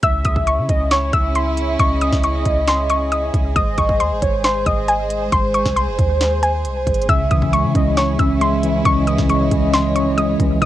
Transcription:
0.03 0.24 C#2 loud
0.03 3.52 C#4 medium
0.03 3.52 E4 medium
0.03 10.58 G#4 medium
0.03 0.65 E5 loud
0.03 0.20 E6 loud
0.03 kick loud
0.03 closed hi-hat medium
0.25 0.60 C#2 loud
0.25 0.42 D#6 medium
0.25 kick medium
0.25 closed hi-hat medium
0.36 kick medium
0.47 0.89 C#6 medium
0.47 closed hi-hat medium
0.58 0.69 C#3 loud
0.69 1.12 C#2 loud
0.69 0.90 D#5 medium
0.69 kick medium
0.69 closed hi-hat medium
0.91 1.12 C#5 medium
0.91 1.09 C#6 medium
0.91 snare loud
0.91 clap medium
0.91 closed hi-hat medium
1.13 1.77 C#2 loud
1.13 1.75 E5 medium
1.13 1.31 E6 medium
1.13 kick medium
1.13 closed hi-hat medium
1.35 1.53 C6 medium
1.35 closed hi-hat medium
1.57 closed hi-hat medium
1.79 2.11 C#2 loud
1.79 3.52 D#5 loud
1.79 1.97 C#6 loud
1.79 kick loud
1.79 closed hi-hat medium
2.01 2.19 D#6 medium
2.01 closed hi-hat medium
2.12 2.44 C#2 loud
2.12 kick medium
2.12 snare medium
2.23 2.65 C#6 medium
2.23 closed hi-hat medium
2.45 3.30 C#2 loud
2.45 kick medium
2.45 closed hi-hat medium
2.68 2.85 C6 loud
2.68 snare loud
2.68 clap medium
2.68 closed hi-hat medium
2.90 3.07 C#6 medium
2.90 closed hi-hat medium
3.12 3.53 D#6 medium
3.12 closed hi-hat medium
3.34 3.55 C#2 loud
3.34 kick medium
3.34 closed hi-hat medium
3.56 3.77 G#1 loud
3.56 7.05 G#3 medium
3.56 7.05 C5 medium
3.56 4.18 D#5 loud
3.56 3.73 D#6 loud
3.56 kick loud
3.56 closed hi-hat medium
3.78 4.02 G#1 loud
3.78 3.95 C#6 medium
3.78 kick medium
3.78 closed hi-hat medium
3.89 kick medium
4.00 4.13 D#2 loud
4.00 4.42 C6 medium
4.00 closed hi-hat medium
4.11 4.22 G#1 loud
4.22 4.65 G#1 loud
4.22 4.43 C#5 medium
4.22 kick medium
4.22 closed hi-hat medium
4.44 4.65 C5 medium
4.44 4.62 C6 loud
4.44 snare loud
4.44 clap medium
4.44 closed hi-hat medium
4.66 5.30 G#1 loud
4.66 5.28 D#5 medium
4.66 4.84 D#6 medium
4.66 kick medium
4.66 closed hi-hat medium
4.88 5.06 G#5 medium
4.88 closed hi-hat medium
5.10 closed hi-hat medium
5.32 5.64 G#1 loud
5.32 7.05 C5 loud
5.32 5.50 C6 loud
5.32 kick loud
5.32 closed hi-hat medium
5.54 5.72 C#6 medium
5.54 closed hi-hat medium
5.65 5.89 C2 loud
5.65 kick medium
5.65 snare medium
5.76 6.39 C6 medium
5.76 closed hi-hat medium
5.87 5.98 F#1 loud
5.99 6.66 D#2 loud
5.99 kick medium
5.99 closed hi-hat medium
6.21 snare loud
6.21 clap medium
6.21 closed hi-hat medium
6.43 7.05 G#5 medium
6.43 closed hi-hat medium
6.65 6.86 C2 loud
6.65 closed hi-hat medium
6.87 7.08 G#1 loud
6.87 kick medium
6.87 closed hi-hat medium
6.94 closed hi-hat medium
7.02 closed hi-hat medium
7.09 7.30 C#2 loud
7.09 8.19 C#3 medium
7.09 10.58 C#4 medium
7.09 10.58 E4 medium
7.09 7.71 E5 loud
7.09 7.26 E6 loud
7.09 kick loud
7.09 closed hi-hat medium
7.31 7.65 C#2 loud
7.31 8.41 E3 medium
7.31 7.48 D#6 medium
7.31 kick medium
7.31 closed hi-hat medium
7.42 kick medium
7.53 8.40 G#3 medium
7.53 7.94 C#6 medium
7.53 closed hi-hat medium
7.64 7.74 C#3 loud
7.75 8.17 C#2 loud
7.75 8.18 C#4 medium
7.75 7.96 D#5 medium
7.75 kick medium
7.75 closed hi-hat medium
7.97 8.18 C#5 medium
7.97 8.14 C#6 medium
7.97 snare loud
7.97 clap medium
7.97 closed hi-hat medium
8.19 8.83 C#2 loud
8.19 9.29 C#4 medium
8.19 8.81 E5 medium
8.19 8.37 E6 medium
8.19 kick medium
8.19 closed hi-hat medium
8.41 9.28 G#3 medium
8.41 8.59 C6 medium
8.41 closed hi-hat medium
8.63 9.06 E3 medium
8.63 closed hi-hat medium
8.85 9.17 C#2 loud
8.85 9.96 C#3 medium
8.85 10.60 C#5 medium
8.85 10.58 D#5 loud
8.85 9.03 C#6 loud
8.85 kick loud
8.85 closed hi-hat medium
9.07 10.18 E3 medium
9.07 9.25 D#6 medium
9.07 closed hi-hat medium
9.18 9.50 C#2 loud
9.18 kick medium
9.18 snare medium
9.29 10.16 G#3 medium
9.29 9.71 C#6 medium
9.29 closed hi-hat medium
9.51 10.36 C#2 loud
9.51 9.94 C#4 loud
9.51 kick medium
9.51 closed hi-hat medium
9.73 9.91 C6 loud
9.73 snare loud
9.73 clap medium
9.73 closed hi-hat medium
9.95 10.62 C#4 medium
9.95 10.13 C#6 medium
9.95 closed hi-hat medium
10.18 10.62 G#3 medium
10.18 10.59 D#6 medium
10.18 closed hi-hat medium
10.40 10.61 C#2 loud
10.40 10.62 E3 medium
10.40 kick medium
10.40 closed hi-hat medium
10.62 10.65 G#1 loud
10.62 10.65 G#2 medium
10.62 10.65 G#3 medium
10.62 10.65 G#4 medium
10.62 10.65 C5 medium
10.62 10.65 D#5 medium
10.62 10.65 D#5 loud
10.62 10.65 D#6 loud
10.62 kick loud
10.62 closed hi-hat medium

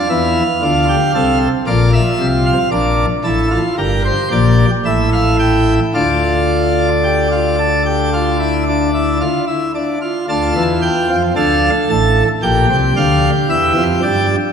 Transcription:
0.00 1.38 F5 medium
0.09 0.42 E2 medium
0.09 0.43 E3 medium
0.09 0.43 E4 medium
0.62 0.95 D2 medium
0.62 0.95 D3 medium
0.62 0.85 F4 medium
0.89 1.11 G4 medium
1.15 1.48 C2 medium
1.15 1.48 C3 medium
1.15 1.48 A4 medium
1.67 2.00 A#1 medium
1.67 2.00 A#2 medium
1.67 2.58 F4 medium
1.67 1.90 D5 loud
1.93 2.26 E5 medium
2.20 2.53 C2 medium
2.20 2.53 C3 medium
2.46 2.69 F5 medium
2.72 3.05 A#1 medium
2.72 3.05 A#2 medium
2.72 3.05 D4 medium
2.72 3.05 D5 medium
3.24 3.58 A1 medium
3.24 3.58 A2 medium
3.24 3.48 E4 medium
3.24 3.58 A4 medium
3.51 3.75 F4 medium
3.78 4.11 G1 medium
3.78 4.11 G2 medium
3.78 4.70 G4 medium
3.78 4.01 A#4 medium
4.05 4.28 C5 medium
4.32 4.65 A#1 medium
4.32 4.65 A#2 medium
4.32 4.65 D5 medium
4.85 5.79 A1 medium
4.85 5.79 A2 medium
4.85 5.79 E4 medium
4.85 5.09 E5 medium
5.12 5.36 F5 medium
5.39 5.74 G5 medium
5.95 9.22 D2 medium
5.95 9.22 D3 medium
5.95 6.89 F4 medium
5.95 9.22 D5 medium
7.04 7.27 G4 medium
7.32 7.55 F4 medium
7.59 7.82 A4 medium
7.86 8.09 G4 medium
8.13 8.37 F4 medium
8.39 8.63 E4 medium
8.67 8.90 D4 medium
8.94 9.17 E4 medium
9.21 9.44 F4 medium
9.47 9.71 E4 medium
9.75 9.98 D4 medium
10.02 10.25 F4 medium
10.29 10.52 D2 medium
10.29 10.52 D3 medium
10.29 11.22 F4 medium
10.29 10.63 A5 medium
10.55 10.89 E2 medium
10.55 10.89 E3 medium
10.82 11.16 G5 medium
11.10 11.33 F2 medium
11.10 11.33 F3 medium
11.36 11.70 D2 medium
11.36 11.69 D3 medium
11.36 12.28 A4 medium
11.36 11.69 F5 medium
11.90 12.23 A1 medium
11.90 12.23 A2 medium
11.90 12.23 A5 medium
12.43 12.66 A#1 medium
12.43 12.66 A#2 medium
12.43 14.26 G4 medium
12.43 12.76 G5 medium
12.69 12.92 C2 medium
12.69 12.92 C3 medium
12.97 13.29 D2 medium
12.97 13.29 D3 medium
12.97 13.29 F5 medium
13.50 13.73 E2 medium
13.50 13.73 E3 medium
13.50 13.83 E5 medium
13.77 14.00 F2 medium
13.77 14.00 F3 medium
14.03 14.36 G2 medium
14.03 14.36 G3 medium
14.03 14.36 D5 medium

